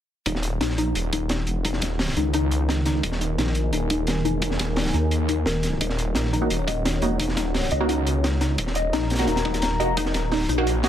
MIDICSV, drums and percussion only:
0, 0, Header, 1, 2, 480
1, 0, Start_track
1, 0, Tempo, 346821
1, 360, Time_signature, 4, 2, 24, 8
1, 15068, End_track
2, 0, Start_track
2, 0, Title_t, "Drums"
2, 359, Note_on_c, 9, 36, 112
2, 360, Note_on_c, 9, 42, 81
2, 486, Note_on_c, 9, 38, 52
2, 498, Note_off_c, 9, 36, 0
2, 499, Note_off_c, 9, 42, 0
2, 593, Note_on_c, 9, 42, 63
2, 625, Note_off_c, 9, 38, 0
2, 731, Note_off_c, 9, 42, 0
2, 841, Note_on_c, 9, 38, 109
2, 841, Note_on_c, 9, 42, 77
2, 966, Note_off_c, 9, 38, 0
2, 966, Note_on_c, 9, 38, 53
2, 979, Note_off_c, 9, 42, 0
2, 1079, Note_on_c, 9, 42, 66
2, 1104, Note_off_c, 9, 38, 0
2, 1217, Note_off_c, 9, 42, 0
2, 1319, Note_on_c, 9, 42, 88
2, 1457, Note_off_c, 9, 42, 0
2, 1560, Note_on_c, 9, 36, 99
2, 1562, Note_on_c, 9, 42, 59
2, 1698, Note_off_c, 9, 36, 0
2, 1700, Note_off_c, 9, 42, 0
2, 1790, Note_on_c, 9, 42, 77
2, 1794, Note_on_c, 9, 38, 112
2, 1928, Note_off_c, 9, 42, 0
2, 1932, Note_off_c, 9, 38, 0
2, 2031, Note_on_c, 9, 42, 63
2, 2170, Note_off_c, 9, 42, 0
2, 2280, Note_on_c, 9, 36, 120
2, 2286, Note_on_c, 9, 42, 87
2, 2392, Note_on_c, 9, 38, 48
2, 2418, Note_off_c, 9, 36, 0
2, 2425, Note_off_c, 9, 42, 0
2, 2512, Note_on_c, 9, 42, 66
2, 2520, Note_on_c, 9, 36, 103
2, 2531, Note_off_c, 9, 38, 0
2, 2532, Note_on_c, 9, 38, 43
2, 2651, Note_off_c, 9, 42, 0
2, 2658, Note_off_c, 9, 36, 0
2, 2670, Note_off_c, 9, 38, 0
2, 2756, Note_on_c, 9, 38, 112
2, 2758, Note_on_c, 9, 46, 76
2, 2880, Note_off_c, 9, 38, 0
2, 2880, Note_on_c, 9, 38, 57
2, 2896, Note_off_c, 9, 46, 0
2, 2997, Note_on_c, 9, 42, 61
2, 3019, Note_off_c, 9, 38, 0
2, 3135, Note_off_c, 9, 42, 0
2, 3231, Note_on_c, 9, 42, 77
2, 3369, Note_off_c, 9, 42, 0
2, 3479, Note_on_c, 9, 42, 67
2, 3617, Note_off_c, 9, 42, 0
2, 3720, Note_on_c, 9, 38, 116
2, 3733, Note_on_c, 9, 42, 83
2, 3858, Note_off_c, 9, 38, 0
2, 3871, Note_off_c, 9, 42, 0
2, 3951, Note_on_c, 9, 42, 64
2, 3953, Note_on_c, 9, 38, 52
2, 4090, Note_off_c, 9, 42, 0
2, 4091, Note_off_c, 9, 38, 0
2, 4199, Note_on_c, 9, 36, 118
2, 4199, Note_on_c, 9, 42, 80
2, 4315, Note_on_c, 9, 38, 51
2, 4338, Note_off_c, 9, 36, 0
2, 4338, Note_off_c, 9, 42, 0
2, 4443, Note_on_c, 9, 42, 63
2, 4453, Note_off_c, 9, 38, 0
2, 4581, Note_off_c, 9, 42, 0
2, 4684, Note_on_c, 9, 38, 104
2, 4685, Note_on_c, 9, 42, 82
2, 4794, Note_off_c, 9, 38, 0
2, 4794, Note_on_c, 9, 38, 52
2, 4823, Note_off_c, 9, 42, 0
2, 4911, Note_on_c, 9, 42, 61
2, 4932, Note_off_c, 9, 38, 0
2, 5049, Note_off_c, 9, 42, 0
2, 5158, Note_on_c, 9, 42, 89
2, 5297, Note_off_c, 9, 42, 0
2, 5399, Note_on_c, 9, 36, 108
2, 5401, Note_on_c, 9, 42, 59
2, 5538, Note_off_c, 9, 36, 0
2, 5539, Note_off_c, 9, 42, 0
2, 5631, Note_on_c, 9, 42, 80
2, 5647, Note_on_c, 9, 38, 105
2, 5770, Note_off_c, 9, 42, 0
2, 5785, Note_off_c, 9, 38, 0
2, 5884, Note_on_c, 9, 42, 60
2, 6022, Note_off_c, 9, 42, 0
2, 6114, Note_on_c, 9, 42, 88
2, 6119, Note_on_c, 9, 36, 118
2, 6239, Note_on_c, 9, 38, 55
2, 6252, Note_off_c, 9, 42, 0
2, 6258, Note_off_c, 9, 36, 0
2, 6354, Note_off_c, 9, 38, 0
2, 6354, Note_on_c, 9, 38, 46
2, 6359, Note_on_c, 9, 36, 104
2, 6359, Note_on_c, 9, 42, 64
2, 6492, Note_off_c, 9, 38, 0
2, 6498, Note_off_c, 9, 36, 0
2, 6498, Note_off_c, 9, 42, 0
2, 6591, Note_on_c, 9, 46, 81
2, 6597, Note_on_c, 9, 38, 118
2, 6718, Note_off_c, 9, 38, 0
2, 6718, Note_on_c, 9, 38, 60
2, 6729, Note_off_c, 9, 46, 0
2, 6837, Note_on_c, 9, 42, 62
2, 6856, Note_off_c, 9, 38, 0
2, 6976, Note_off_c, 9, 42, 0
2, 7076, Note_on_c, 9, 42, 75
2, 7214, Note_off_c, 9, 42, 0
2, 7316, Note_on_c, 9, 42, 65
2, 7319, Note_on_c, 9, 36, 61
2, 7454, Note_off_c, 9, 42, 0
2, 7458, Note_off_c, 9, 36, 0
2, 7554, Note_on_c, 9, 38, 125
2, 7568, Note_on_c, 9, 42, 86
2, 7692, Note_off_c, 9, 38, 0
2, 7706, Note_off_c, 9, 42, 0
2, 7791, Note_on_c, 9, 42, 62
2, 7807, Note_on_c, 9, 38, 50
2, 7930, Note_off_c, 9, 42, 0
2, 7946, Note_off_c, 9, 38, 0
2, 8039, Note_on_c, 9, 36, 112
2, 8044, Note_on_c, 9, 42, 81
2, 8157, Note_on_c, 9, 38, 46
2, 8178, Note_off_c, 9, 36, 0
2, 8182, Note_off_c, 9, 42, 0
2, 8283, Note_on_c, 9, 42, 64
2, 8296, Note_off_c, 9, 38, 0
2, 8421, Note_off_c, 9, 42, 0
2, 8508, Note_on_c, 9, 38, 113
2, 8516, Note_on_c, 9, 42, 83
2, 8632, Note_off_c, 9, 38, 0
2, 8632, Note_on_c, 9, 38, 51
2, 8655, Note_off_c, 9, 42, 0
2, 8765, Note_on_c, 9, 42, 66
2, 8770, Note_off_c, 9, 38, 0
2, 8903, Note_off_c, 9, 42, 0
2, 9000, Note_on_c, 9, 42, 92
2, 9139, Note_off_c, 9, 42, 0
2, 9239, Note_on_c, 9, 36, 104
2, 9242, Note_on_c, 9, 42, 66
2, 9378, Note_off_c, 9, 36, 0
2, 9380, Note_off_c, 9, 42, 0
2, 9486, Note_on_c, 9, 38, 116
2, 9487, Note_on_c, 9, 42, 92
2, 9624, Note_off_c, 9, 38, 0
2, 9626, Note_off_c, 9, 42, 0
2, 9713, Note_on_c, 9, 42, 61
2, 9851, Note_off_c, 9, 42, 0
2, 9959, Note_on_c, 9, 36, 107
2, 9969, Note_on_c, 9, 42, 88
2, 10081, Note_on_c, 9, 38, 55
2, 10098, Note_off_c, 9, 36, 0
2, 10107, Note_off_c, 9, 42, 0
2, 10192, Note_off_c, 9, 38, 0
2, 10192, Note_on_c, 9, 38, 45
2, 10200, Note_on_c, 9, 36, 100
2, 10203, Note_on_c, 9, 42, 63
2, 10330, Note_off_c, 9, 38, 0
2, 10338, Note_off_c, 9, 36, 0
2, 10341, Note_off_c, 9, 42, 0
2, 10441, Note_on_c, 9, 46, 76
2, 10442, Note_on_c, 9, 38, 101
2, 10555, Note_off_c, 9, 38, 0
2, 10555, Note_on_c, 9, 38, 55
2, 10580, Note_off_c, 9, 46, 0
2, 10667, Note_on_c, 9, 42, 60
2, 10693, Note_off_c, 9, 38, 0
2, 10805, Note_off_c, 9, 42, 0
2, 10919, Note_on_c, 9, 42, 94
2, 11057, Note_off_c, 9, 42, 0
2, 11163, Note_on_c, 9, 42, 68
2, 11301, Note_off_c, 9, 42, 0
2, 11404, Note_on_c, 9, 42, 83
2, 11406, Note_on_c, 9, 38, 123
2, 11543, Note_off_c, 9, 42, 0
2, 11545, Note_off_c, 9, 38, 0
2, 11634, Note_on_c, 9, 38, 59
2, 11637, Note_on_c, 9, 42, 63
2, 11773, Note_off_c, 9, 38, 0
2, 11776, Note_off_c, 9, 42, 0
2, 11877, Note_on_c, 9, 42, 84
2, 11880, Note_on_c, 9, 36, 104
2, 11997, Note_on_c, 9, 38, 50
2, 12015, Note_off_c, 9, 42, 0
2, 12018, Note_off_c, 9, 36, 0
2, 12111, Note_on_c, 9, 42, 69
2, 12135, Note_off_c, 9, 38, 0
2, 12249, Note_off_c, 9, 42, 0
2, 12362, Note_on_c, 9, 42, 84
2, 12363, Note_on_c, 9, 38, 106
2, 12476, Note_off_c, 9, 38, 0
2, 12476, Note_on_c, 9, 38, 55
2, 12500, Note_off_c, 9, 42, 0
2, 12596, Note_on_c, 9, 42, 68
2, 12614, Note_off_c, 9, 38, 0
2, 12614, Note_on_c, 9, 38, 92
2, 12657, Note_off_c, 9, 38, 0
2, 12657, Note_on_c, 9, 38, 90
2, 12669, Note_off_c, 9, 42, 0
2, 12669, Note_on_c, 9, 42, 67
2, 12711, Note_off_c, 9, 42, 0
2, 12711, Note_on_c, 9, 42, 78
2, 12730, Note_off_c, 9, 38, 0
2, 12730, Note_on_c, 9, 38, 108
2, 12834, Note_off_c, 9, 42, 0
2, 12834, Note_on_c, 9, 42, 66
2, 12837, Note_off_c, 9, 38, 0
2, 12837, Note_on_c, 9, 38, 46
2, 12957, Note_off_c, 9, 38, 0
2, 12957, Note_on_c, 9, 38, 97
2, 12967, Note_off_c, 9, 42, 0
2, 12967, Note_on_c, 9, 42, 70
2, 13080, Note_on_c, 9, 36, 99
2, 13095, Note_off_c, 9, 38, 0
2, 13106, Note_off_c, 9, 42, 0
2, 13198, Note_on_c, 9, 38, 42
2, 13203, Note_on_c, 9, 42, 65
2, 13218, Note_off_c, 9, 36, 0
2, 13312, Note_off_c, 9, 42, 0
2, 13312, Note_on_c, 9, 42, 89
2, 13323, Note_off_c, 9, 38, 0
2, 13323, Note_on_c, 9, 38, 109
2, 13451, Note_off_c, 9, 42, 0
2, 13461, Note_off_c, 9, 38, 0
2, 13565, Note_on_c, 9, 42, 69
2, 13704, Note_off_c, 9, 42, 0
2, 13798, Note_on_c, 9, 42, 92
2, 13800, Note_on_c, 9, 36, 115
2, 13914, Note_on_c, 9, 38, 51
2, 13937, Note_off_c, 9, 42, 0
2, 13938, Note_off_c, 9, 36, 0
2, 14035, Note_on_c, 9, 42, 61
2, 14040, Note_on_c, 9, 36, 99
2, 14041, Note_off_c, 9, 38, 0
2, 14041, Note_on_c, 9, 38, 46
2, 14173, Note_off_c, 9, 42, 0
2, 14178, Note_off_c, 9, 36, 0
2, 14179, Note_off_c, 9, 38, 0
2, 14277, Note_on_c, 9, 38, 106
2, 14280, Note_on_c, 9, 46, 77
2, 14390, Note_off_c, 9, 38, 0
2, 14390, Note_on_c, 9, 38, 52
2, 14418, Note_off_c, 9, 46, 0
2, 14520, Note_on_c, 9, 42, 68
2, 14529, Note_off_c, 9, 38, 0
2, 14659, Note_off_c, 9, 42, 0
2, 14764, Note_on_c, 9, 42, 90
2, 14903, Note_off_c, 9, 42, 0
2, 14991, Note_on_c, 9, 38, 95
2, 15000, Note_on_c, 9, 36, 58
2, 15001, Note_on_c, 9, 42, 81
2, 15068, Note_off_c, 9, 36, 0
2, 15068, Note_off_c, 9, 38, 0
2, 15068, Note_off_c, 9, 42, 0
2, 15068, End_track
0, 0, End_of_file